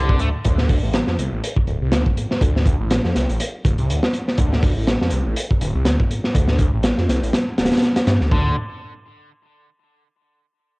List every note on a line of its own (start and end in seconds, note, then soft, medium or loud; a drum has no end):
0.00 0.22 C2 medium
0.00 0.19 D3 loud
0.10 kick medium
0.20 0.31 D2 medium
0.20 0.28 A3 loud
0.20 closed hi-hat medium
0.45 0.79 D2 loud
0.45 kick loud
0.45 closed hi-hat medium
0.58 snare soft
0.69 kick medium
0.69 open hi-hat medium
0.83 1.02 A1 medium
0.94 snare loud
0.94 closed hi-hat medium
1.07 1.16 F2 medium
1.07 snare soft
1.19 1.30 C2 medium
1.19 closed hi-hat medium
1.32 1.41 A1 loud
1.44 closed hi-hat medium
1.56 kick medium
1.67 1.79 D1 loud
1.67 closed hi-hat medium
1.82 1.94 C2 loud
1.92 2.03 D2 loud
1.92 snare loud
1.92 closed hi-hat medium
2.06 kick loud
2.17 closed hi-hat medium
2.31 snare soft
2.41 2.75 D2 loud
2.41 kick loud
2.41 closed hi-hat medium
2.56 snare soft
2.65 kick medium
2.65 closed hi-hat medium
2.80 2.99 A1 medium
2.90 snare loud
2.90 closed hi-hat medium
3.04 3.13 F2 medium
3.04 snare soft
3.15 3.26 C2 medium
3.15 snare soft
3.15 closed hi-hat medium
3.29 3.38 A1 loud
3.29 closed hi-hat soft
3.40 closed hi-hat loud
3.65 3.76 D1 loud
3.65 kick medium
3.65 closed hi-hat medium
3.78 3.91 C2 loud
3.78 closed hi-hat soft
3.89 4.00 D2 loud
3.89 closed hi-hat medium
4.03 snare loud
4.14 closed hi-hat medium
4.28 snare soft
4.38 4.72 D2 loud
4.38 kick loud
4.38 closed hi-hat medium
4.53 snare soft
4.63 kick loud
4.63 open hi-hat medium
4.77 4.96 A1 medium
4.87 snare loud
4.87 closed hi-hat medium
5.01 5.10 F2 medium
5.01 snare medium
5.10 5.23 C2 medium
5.10 closed hi-hat medium
5.26 5.34 A1 loud
5.36 closed hi-hat medium
5.50 kick medium
5.61 5.72 D1 loud
5.61 closed hi-hat medium
5.75 5.87 C2 loud
5.85 5.97 D2 loud
5.85 snare loud
5.85 closed hi-hat medium
6.00 kick loud
6.11 closed hi-hat medium
6.24 snare soft
6.35 6.69 D2 loud
6.35 kick loud
6.35 closed hi-hat medium
6.48 snare medium
6.59 kick loud
6.59 closed hi-hat medium
6.73 6.92 A1 medium
6.83 snare loud
6.83 closed hi-hat medium
6.97 7.07 F2 medium
6.97 snare soft
7.09 7.20 C2 medium
7.09 snare soft
7.09 closed hi-hat medium
7.23 7.31 A1 loud
7.23 closed hi-hat soft
7.33 snare loud
7.33 closed hi-hat medium
7.58 7.69 D1 medium
7.58 snare medium
7.58 closed hi-hat medium
7.65 snare medium
7.65 closed hi-hat medium
7.71 snare medium
7.71 closed hi-hat medium
7.77 snare medium
7.77 closed hi-hat medium
7.82 snare loud
7.82 closed hi-hat medium
7.96 snare loud
7.96 closed hi-hat medium
8.07 8.18 G2 medium
8.07 snare loud
8.07 closed hi-hat medium
8.21 8.29 D2 loud
8.21 snare soft
8.31 8.54 D2 loud
8.31 8.55 D3 medium
8.31 kick loud